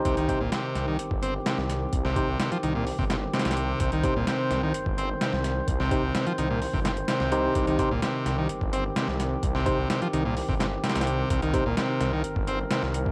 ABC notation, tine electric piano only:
X:1
M:4/4
L:1/8
Q:1/4=128
K:Cm
V:1 name="Tine electric piano"
[EGc] [EGc] z6 | z [EGc] z6 | z [EGc] z6 | z [EGc] z4 z [EGc]- |
[EGc] [EGc] z6 | z [EGc] z6 | z [EGc] z6 |]